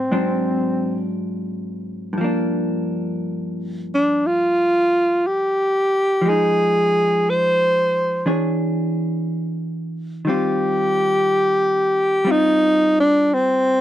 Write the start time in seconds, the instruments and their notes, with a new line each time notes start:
Already playing: hollow-body jazz guitar G3 C4, alto saxophone C4
0.12 hollow-body jazz guitar G#2 F#3 C4 D4
2.13 hollow-body jazz guitar G2
2.18 hollow-body jazz guitar F3 A#3
2.24 hollow-body jazz guitar D4
3.94 alto saxophone D4
4.27 alto saxophone F4
5.27 alto saxophone G4
6.22 hollow-body jazz guitar F3
6.26 hollow-body jazz guitar G#3 D#4, alto saxophone G#4
7.30 alto saxophone C5
8.26 hollow-body jazz guitar E3 D4 G#4 C#5
10.25 hollow-body jazz guitar D#3 G3 C4
10.29 hollow-body jazz guitar F4, alto saxophone G4
12.25 hollow-body jazz guitar G3 C4 F4
12.31 alto saxophone D#4
13.00 alto saxophone D4
13.33 alto saxophone C4